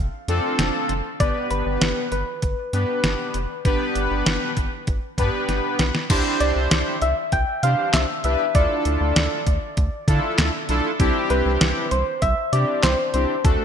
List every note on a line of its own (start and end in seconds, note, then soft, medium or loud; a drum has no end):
0.28 0.40 F2 loud
0.28 0.93 C4 medium
0.28 0.93 D4 medium
0.28 0.93 F4 medium
0.28 0.93 A4 loud
0.28 closed hi-hat medium
0.59 0.71 F1 loud
0.59 snare loud
0.59 closed hi-hat medium
0.89 1.02 F1 medium
0.89 closed hi-hat medium
1.20 1.32 G1 loud
1.20 2.07 B3 medium
1.20 2.07 D4 medium
1.20 2.07 G4 medium
1.20 2.07 B4 medium
1.20 1.52 D5 loud
1.20 kick loud
1.20 closed hi-hat medium
1.51 1.63 G1 loud
1.51 2.12 B4 loud
1.51 closed hi-hat medium
1.66 1.78 G1 medium
1.81 1.94 G1 loud
1.81 snare loud
1.81 closed hi-hat medium
2.12 2.24 G1 loud
2.12 5.45 B4 loud
2.12 closed hi-hat medium
2.42 2.55 G1 loud
2.42 kick medium
2.42 closed hi-hat medium
2.73 2.85 G2 loud
2.73 3.38 B3 medium
2.73 3.38 D4 medium
2.73 3.38 G4 medium
2.73 3.38 B4 medium
2.73 closed hi-hat medium
3.04 3.16 G1 medium
3.04 snare loud
3.04 closed hi-hat medium
3.34 3.47 F1 medium
3.34 closed hi-hat medium
3.65 3.77 G1 loud
3.65 4.51 B3 medium
3.65 4.51 D4 medium
3.65 4.51 G4 medium
3.65 4.51 B4 loud
3.65 kick loud
3.65 closed hi-hat medium
3.95 4.08 G1 loud
3.95 closed hi-hat medium
4.11 4.23 G1 medium
4.26 4.38 G1 loud
4.26 snare loud
4.26 closed hi-hat medium
4.57 4.69 G1 medium
4.57 kick medium
4.57 closed hi-hat medium
4.87 5.00 G1 loud
4.87 kick medium
4.87 closed hi-hat medium
5.18 5.30 G2 loud
5.18 5.83 B3 medium
5.18 5.83 D4 medium
5.18 5.83 G4 medium
5.18 5.83 B4 loud
5.18 kick medium
5.18 closed hi-hat medium
5.49 5.61 G1 loud
5.49 snare medium
5.49 closed hi-hat medium
5.79 5.91 B1 medium
5.79 snare medium
5.79 closed hi-hat medium
5.95 snare medium
6.10 6.22 C2 loud
6.10 6.96 D4 loud
6.10 6.96 E4 medium
6.10 6.96 G4 medium
6.10 6.96 C5 loud
6.10 kick loud
6.10 closed hi-hat medium
6.10 crash loud
6.40 6.53 C2 loud
6.40 6.98 D5 loud
6.40 closed hi-hat medium
6.56 6.68 C2 loud
6.71 6.83 C2 loud
6.71 snare loud
6.71 closed hi-hat medium
7.02 7.14 C2 loud
7.02 7.16 E5 loud
7.02 closed hi-hat medium
7.32 7.45 C2 loud
7.32 7.65 G5 loud
7.32 kick medium
7.32 closed hi-hat medium
7.63 7.75 C3 loud
7.63 8.06 E3 medium
7.63 8.06 D4 medium
7.63 8.06 G4 medium
7.63 8.06 C5 medium
7.63 7.95 F5 loud
7.63 closed hi-hat medium
7.94 8.06 C2 loud
7.94 8.24 E5 loud
7.94 snare loud
7.94 clap medium
7.94 closed hi-hat medium
8.24 8.36 C2 loud
8.24 8.46 D4 medium
8.24 8.46 E4 medium
8.24 8.46 G4 medium
8.24 8.46 B4 medium
8.24 8.57 E5 loud
8.24 closed hi-hat medium
8.55 8.67 D2 loud
8.55 9.41 D4 medium
8.55 9.41 E4 medium
8.55 9.41 F4 medium
8.55 9.41 A4 medium
8.55 10.69 D5 medium
8.55 kick loud
8.55 closed hi-hat medium
8.85 8.98 D2 medium
8.85 closed hi-hat medium
9.01 9.13 D2 loud
9.16 9.28 D2 loud
9.16 snare loud
9.16 closed hi-hat medium
9.47 9.59 D2 loud
9.47 kick medium
9.47 closed hi-hat medium
9.77 9.90 D2 loud
9.77 kick medium
9.77 closed hi-hat medium
10.08 10.20 D3 medium
10.08 10.51 D4 medium
10.08 10.51 E4 medium
10.08 10.51 F4 medium
10.08 10.51 A4 medium
10.08 kick medium
10.08 closed hi-hat medium
10.38 10.51 D2 loud
10.38 snare loud
10.38 clap medium
10.38 closed hi-hat medium
10.69 10.81 B1 loud
10.69 10.91 D4 loud
10.69 10.91 E4 medium
10.69 10.91 F4 medium
10.69 10.91 A4 loud
10.69 closed hi-hat medium
11.00 11.12 C2 loud
11.00 11.86 C4 medium
11.00 11.86 D4 medium
11.00 11.86 E4 medium
11.00 11.86 G4 loud
11.00 kick loud
11.00 closed hi-hat medium
11.30 11.43 C2 loud
11.30 11.93 B4 loud
11.30 closed hi-hat medium
11.46 11.58 C2 loud
11.61 11.73 C2 loud
11.61 snare loud
11.61 closed hi-hat medium
11.91 12.04 C2 loud
11.91 12.21 C5 loud
11.91 closed hi-hat medium
12.22 12.34 C2 loud
12.22 12.54 E5 loud
12.22 kick medium
12.22 closed hi-hat medium
12.53 12.65 C3 loud
12.53 12.96 C4 medium
12.53 12.96 D4 medium
12.53 12.96 E4 medium
12.53 12.96 G4 medium
12.53 12.85 D5 loud
12.53 closed hi-hat medium
12.83 12.96 C2 loud
12.83 13.13 C5 loud
12.83 snare loud
12.83 clap medium
12.83 closed hi-hat medium
13.14 13.26 C2 medium
13.14 13.36 C4 medium
13.14 13.36 D4 medium
13.14 13.36 E4 medium
13.14 13.36 G4 medium
13.14 13.46 C5 loud
13.14 closed hi-hat medium
13.44 13.57 D2 loud
13.44 13.65 A3 medium
13.44 13.65 D4 medium
13.44 13.65 F#4 medium
13.44 13.65 A4 medium
13.44 kick loud
13.44 closed hi-hat medium